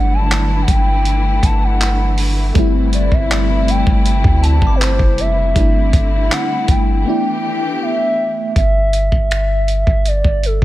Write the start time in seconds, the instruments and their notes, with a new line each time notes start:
Already playing: 808-style bass G1, string section D3 E3 A3 E4, fm electric piano F#3 G3 A3 D4, soft synth lead F#5
0.13 soft synth lead A5
0.31 clap, closed hi-hat
0.62 soft synth lead F#5
0.68 808-style bass G1, soft synth lead G5, kick, closed hi-hat
1.05 closed hi-hat
1.43 808-style bass G1, synth bell F#5, soft synth lead A5, kick, closed hi-hat
1.64 soft synth lead F#5
1.81 clap, closed hi-hat
2.18 open hi-hat
2.54 808-style bass G1, string section C3 E4, fm electric piano G3 A3 C4, kick, closed hi-hat
2.59 fm electric piano E4
2.93 soft synth lead D5, closed hi-hat
3.12 808-style bass G1, soft synth lead E5, kick
3.31 synth bell D5, clap, closed hi-hat
3.68 soft synth lead G5, closed hi-hat
3.87 808-style bass G1, kick
4.06 closed hi-hat
4.24 808-style bass D2, kick
4.43 synth bell A5, soft synth lead A5, closed hi-hat
4.62 808-style bass G1, kick
4.67 synth bell D6
4.75 soft synth lead B4
4.81 soft synth lead C5, clap, closed hi-hat
4.99 808-style bass F#1, kick
5.18 soft synth lead E5, closed hi-hat
5.54 808-style bass G1, string section D3 C4 E4, fm electric piano G3 A3 D4, kick, closed hi-hat
5.59 fm electric piano E4
5.93 808-style bass G1, kick, closed hi-hat
6.31 soft synth lead F#5, clap, closed hi-hat
6.68 808-style bass G1, soft synth lead G5, kick, closed hi-hat
7.05 string section E3 B3 G4, fm electric piano A3 B3 D4
7.09 fm electric piano E4
7.82 soft synth lead E5
8.56 808-style bass G1, soft synth lead E5, kick, closed hi-hat
8.93 closed hi-hat
9.12 808-style bass G1, kick
9.31 finger snap, closed hi-hat
9.68 closed hi-hat
9.87 808-style bass G1, kick
10.05 soft synth lead D5, closed hi-hat
10.24 808-style bass G1, kick
10.43 soft synth lead A4, closed hi-hat